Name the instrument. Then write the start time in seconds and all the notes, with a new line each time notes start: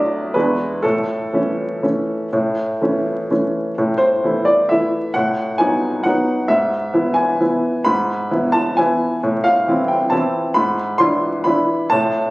upright piano
Already playing: B1 F#3 A3 D4 D5 E5
0.34 E2 E3 G#3 D4 B4
0.82 A2 A4
1.33 E3 A3 C#4
1.83 E3 A3 C#4
2.33 A2
2.81 E3 A3 C#4
3.31 E3 A3 C#4
3.78 A2
3.98 C5
4.24 E3 A3 E4
4.45 D5
4.69 E3 A3 E4 E5
5.14 A2 F#5
5.58 F#3 B3 D#4 G#5
6.03 F#3 B3 D#4 F#5
6.48 G#2 E5
6.94 E3 B3 E4
7.14 G#5
7.40 E3 B3 E4
7.85 G#2 B5
8.31 E3 B3 E4
8.52 A5
8.77 E3 B3 E4 G#5
9.23 A2
9.44 F5
9.68 E3 C4 E4
9.88 G5
10.10 E3 C4 E4 A5
10.54 G#2 B5
10.98 E3 D4 E4 C6
11.44 E3 D4 E4 B5
11.90 A2 A5